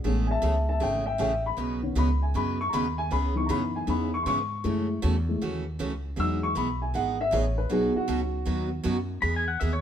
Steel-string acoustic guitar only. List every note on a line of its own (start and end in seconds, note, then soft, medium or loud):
0.04 0.27 C#3 medium
0.04 0.27 E3 medium
0.04 0.27 A3 medium
0.04 0.27 C#4 medium
0.04 0.27 G#4 medium
0.42 0.54 C#3 medium
0.42 0.54 E3 medium
0.42 0.55 A3 medium
0.42 0.55 C#4 medium
0.42 0.55 G#4 medium
0.80 1.03 C#3 medium
0.80 1.03 E3 medium
0.80 1.03 A3 medium
0.80 1.03 C#4 medium
0.80 1.04 G#4 medium
1.18 1.31 C#3 medium
1.18 1.31 E3 medium
1.18 1.31 A3 medium
1.18 1.32 C#4 medium
1.18 1.32 G#4 medium
1.57 1.80 B2 medium
1.57 1.80 C#3 medium
1.57 1.80 F#3 medium
1.57 1.80 B3 medium
1.57 1.80 D#4 medium
1.57 1.80 B4 medium
1.95 2.08 B2 medium
1.95 2.08 C#3 medium
1.95 2.08 F#3 medium
1.95 2.08 B3 medium
1.95 2.08 D#4 medium
1.95 2.08 B4 medium
2.34 2.57 B2 medium
2.34 2.57 C#3 medium
2.34 2.57 F#3 medium
2.34 2.57 B3 medium
2.34 2.57 D#4 medium
2.34 2.57 B4 medium
2.73 2.85 B2 medium
2.73 2.85 C#3 medium
2.73 2.85 F#3 medium
2.73 2.85 B3 medium
2.73 2.85 D#4 medium
2.73 2.85 B4 medium
3.11 3.33 C#3 medium
3.11 3.33 E3 medium
3.11 3.33 B3 medium
3.11 3.33 C#4 medium
3.11 3.34 G#4 medium
3.49 3.61 C#3 medium
3.49 3.61 E3 medium
3.49 3.61 B3 medium
3.49 3.61 C#4 medium
3.49 3.61 G#4 medium
3.87 4.10 C#3 medium
3.87 4.10 E3 medium
3.87 4.10 B3 medium
3.87 4.10 C#4 medium
3.87 4.10 G#4 medium
4.26 4.38 C#3 medium
4.26 4.38 E3 medium
4.26 4.38 B3 medium
4.26 4.38 C#4 medium
4.26 4.38 G#4 medium
4.64 4.86 C#3 medium
4.64 4.86 E3 medium
4.64 4.87 A3 medium
4.64 4.87 C#4 medium
4.64 4.87 F#4 medium
5.02 5.14 C#3 medium
5.02 5.14 E3 medium
5.02 5.14 A3 medium
5.02 5.14 C#4 medium
5.02 5.14 F#4 medium
5.41 5.63 C#3 medium
5.41 5.63 E3 medium
5.41 5.63 A3 medium
5.41 5.64 C#4 medium
5.41 5.64 F#4 medium
5.79 5.91 C#3 medium
5.79 5.91 E3 medium
5.79 5.91 A3 medium
5.79 5.91 C#4 medium
5.79 5.91 F#4 medium
6.16 6.39 E3 medium
6.16 6.39 B3 medium
6.16 6.39 D#4 medium
6.16 6.39 G#4 medium
6.55 6.67 E3 medium
6.55 6.67 B3 medium
6.55 6.67 D#4 medium
6.55 6.68 G#4 medium
6.94 7.16 E3 medium
6.94 7.16 B3 medium
6.94 7.16 D#4 medium
6.94 7.16 G#4 medium
7.31 7.43 E3 medium
7.31 7.44 B3 medium
7.31 7.44 D#4 medium
7.31 7.44 G#4 medium
7.69 7.92 B2 medium
7.69 7.92 F#3 medium
7.69 7.92 B3 medium
7.69 7.92 D#4 medium
7.69 7.92 F#4 medium
8.08 8.20 B2 medium
8.08 8.20 F#3 medium
8.08 8.20 B3 medium
8.08 8.20 D#4 medium
8.08 8.20 F#4 medium
8.45 8.68 B2 medium
8.45 8.68 F#3 medium
8.45 8.68 B3 medium
8.45 8.68 D#4 medium
8.45 8.68 F#4 medium
8.83 8.96 B2 medium
8.83 8.96 F#3 medium
8.83 8.96 B3 medium
8.83 8.96 D#4 medium
8.83 8.96 F#4 medium
9.22 9.44 E3 medium
9.22 9.45 B3 medium
9.22 9.44 D#4 medium
9.22 9.45 G#4 medium
9.61 9.72 E3 medium
9.61 9.72 B3 medium
9.61 9.73 D#4 medium
9.61 9.73 G#4 medium